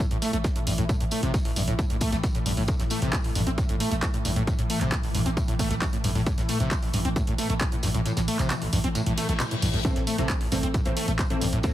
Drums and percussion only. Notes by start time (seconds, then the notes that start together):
0.00 tambourine
0.11 closed hi-hat
0.22 snare, open hi-hat, tambourine
0.33 closed hi-hat
0.44 kick, snare, closed hi-hat, tambourine
0.55 closed hi-hat
0.67 open hi-hat, tambourine
0.78 closed hi-hat
0.89 kick, closed hi-hat, tambourine
1.00 closed hi-hat
1.11 open hi-hat, tambourine
1.23 snare, closed hi-hat
1.34 kick, snare, closed hi-hat, tambourine
1.45 open hi-hat
1.56 open hi-hat, tambourine
1.68 closed hi-hat
1.79 kick, closed hi-hat, tambourine
1.90 closed hi-hat
2.01 kick, open hi-hat, tambourine
2.12 snare, closed hi-hat
2.23 kick, snare, closed hi-hat, tambourine
2.35 closed hi-hat
2.46 open hi-hat, tambourine
2.57 open hi-hat
2.68 kick, closed hi-hat, tambourine
2.79 snare, closed hi-hat
2.90 open hi-hat, tambourine
3.02 snare, closed hi-hat
3.13 kick, snare, clap, closed hi-hat, tambourine
3.24 open hi-hat
3.35 open hi-hat, tambourine
3.47 closed hi-hat
3.58 kick, closed hi-hat, tambourine
3.69 closed hi-hat
3.80 snare, open hi-hat, tambourine
3.91 closed hi-hat
4.03 kick, snare, clap, closed hi-hat, tambourine
4.14 closed hi-hat
4.25 open hi-hat, tambourine
4.36 closed hi-hat
4.47 kick, closed hi-hat, tambourine
4.59 closed hi-hat
4.70 open hi-hat, tambourine
4.81 snare, clap, closed hi-hat
4.92 kick, snare, clap, closed hi-hat, tambourine
5.03 open hi-hat
5.15 open hi-hat, tambourine
5.26 closed hi-hat
5.37 kick, closed hi-hat, tambourine
5.48 closed hi-hat
5.59 kick, open hi-hat, tambourine
5.70 snare, closed hi-hat
5.82 kick, snare, clap, closed hi-hat, tambourine
5.93 closed hi-hat
6.04 open hi-hat, tambourine
6.15 open hi-hat
6.26 kick, closed hi-hat, tambourine
6.38 snare, closed hi-hat
6.49 open hi-hat, tambourine
6.60 snare, closed hi-hat
6.71 kick, snare, clap, closed hi-hat, tambourine
6.83 open hi-hat
6.93 open hi-hat, tambourine
7.05 closed hi-hat
7.16 kick, closed hi-hat, tambourine
7.27 closed hi-hat
7.38 snare, open hi-hat, tambourine
7.50 closed hi-hat
7.60 kick, snare, clap, closed hi-hat, tambourine
7.72 closed hi-hat
7.83 snare, open hi-hat, tambourine
7.94 closed hi-hat
8.06 closed hi-hat, tambourine
8.17 snare, closed hi-hat, tambourine
8.28 open hi-hat
8.39 clap, closed hi-hat, tambourine
8.50 snare, clap, closed hi-hat, tambourine
8.62 open hi-hat
8.73 open hi-hat, tambourine
8.84 closed hi-hat
8.95 closed hi-hat, tambourine
9.06 closed hi-hat
9.18 open hi-hat, tambourine
9.29 snare, closed hi-hat
9.40 snare, clap, closed hi-hat, tambourine
9.51 closed hi-hat
9.62 open hi-hat, tambourine
9.74 open hi-hat
9.85 kick, closed hi-hat, tambourine
9.95 snare, closed hi-hat
10.07 open hi-hat, tambourine
10.18 snare, closed hi-hat
10.29 kick, snare, clap, closed hi-hat, tambourine
10.41 open hi-hat
10.52 open hi-hat, tambourine
10.63 closed hi-hat
10.74 kick, closed hi-hat, tambourine
10.85 closed hi-hat
10.97 snare, open hi-hat, tambourine
11.08 closed hi-hat
11.19 kick, snare, clap, closed hi-hat, tambourine
11.30 closed hi-hat
11.41 open hi-hat, tambourine
11.53 closed hi-hat
11.63 kick, closed hi-hat, tambourine